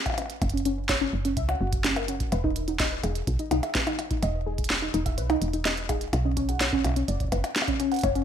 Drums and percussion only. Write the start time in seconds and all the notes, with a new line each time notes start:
0.06 kick, closed hi-hat, percussion blips
0.10 percussion blips
0.14 closed hi-hat, percussion blips
0.18 percussion blips
0.22 percussion blips
0.26 closed hi-hat, percussion blips
0.42 kick, closed hi-hat, percussion blips
0.50 closed hi-hat
0.57 closed hi-hat
0.65 closed hi-hat
0.89 kick, snare, closed hi-hat
1.25 closed hi-hat
1.37 kick, closed hi-hat
1.49 closed hi-hat, percussion blips
1.73 kick, closed hi-hat
1.84 snare, closed hi-hat
1.96 closed hi-hat, percussion blips
2.08 closed hi-hat
2.20 kick, closed hi-hat
2.32 closed hi-hat, percussion blips
2.44 kick
2.56 closed hi-hat
2.68 closed hi-hat
2.80 kick, snare, closed hi-hat
3.04 closed hi-hat, percussion blips
3.15 closed hi-hat
3.27 kick, closed hi-hat
3.39 closed hi-hat
3.51 closed hi-hat, percussion blips
3.63 closed hi-hat, percussion blips
3.75 kick, snare, closed hi-hat
3.87 closed hi-hat, percussion blips
3.99 closed hi-hat, percussion blips
4.11 kick, closed hi-hat
4.23 closed hi-hat, percussion blips
4.58 kick, closed hi-hat
4.64 closed hi-hat
4.70 snare
4.94 closed hi-hat
5.06 kick, closed hi-hat
5.18 closed hi-hat
5.30 closed hi-hat, percussion blips
5.42 closed hi-hat
5.54 closed hi-hat
5.65 snare, closed hi-hat
5.77 closed hi-hat
5.89 kick, closed hi-hat, percussion blips
6.01 closed hi-hat
6.13 closed hi-hat, percussion blips
6.37 kick, closed hi-hat
6.49 closed hi-hat
6.61 snare, closed hi-hat
6.73 kick
6.84 closed hi-hat, percussion blips
6.87 percussion blips
6.89 percussion blips
6.92 percussion blips
6.94 closed hi-hat, percussion blips
7.08 closed hi-hat
7.20 kick, closed hi-hat
7.24 kick
7.28 kick
7.32 kick, closed hi-hat, percussion blips
7.36 kick
7.40 kick, closed hi-hat, percussion blips
7.56 snare, closed hi-hat
7.62 percussion blips
7.68 kick, closed hi-hat
7.80 closed hi-hat
7.92 closed hi-hat
7.94 closed hi-hat
7.96 closed hi-hat
7.99 closed hi-hat
8.01 closed hi-hat
8.04 kick, closed hi-hat, percussion blips
8.15 closed hi-hat